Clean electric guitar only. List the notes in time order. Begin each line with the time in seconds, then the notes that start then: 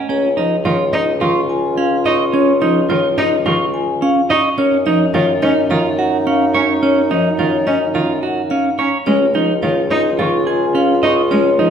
0.09 C#4
0.37 D#4
0.65 F4
0.93 D#4
1.21 F4
1.77 C#4
2.06 D#5
2.34 C#4
2.62 D#4
2.90 F4
3.18 D#4
3.46 F4
4.02 C#4
4.30 D#5
4.58 C#4
4.87 D#4
5.14 F4
5.43 D#4
5.71 F4
5.99 F#4
6.27 C#4
6.55 C#5
6.83 C#4
7.11 D#4
7.39 F4
7.67 D#4
7.95 F4
8.23 F#4
8.51 C#4
8.79 C#5
9.07 C#4
9.35 D#4
9.63 F4
9.91 D#4
10.19 F4
10.47 G#4
10.75 C#4
11.03 D#5
11.31 C#4
11.59 D#4